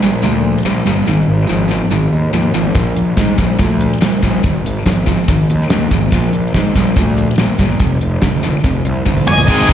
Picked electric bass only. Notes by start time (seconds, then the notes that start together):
0.02 A#1
0.24 D2
0.65 A#1
0.86 G1
1.08 G#1
1.28 G#1
1.49 G#1
1.92 G#1
2.12 D#2
2.34 D#2
2.54 G#1
2.76 A#1
2.96 A#1
3.17 G#2
3.39 A#1
3.60 D2
4.01 A#1
4.23 A#1
4.44 G#1
4.64 G#1
4.86 G#1
5.29 G#1
5.50 D#2
5.71 D#2
5.92 G#1
6.12 A#1
6.34 A#1
6.54 G#2
6.76 A#1
6.97 D2
7.39 A#1
7.59 G1
7.80 F1
8.01 F1
8.23 F1
8.64 F1
8.86 C2
9.07 C2
9.27 G1
9.48 G#1
9.69 G#1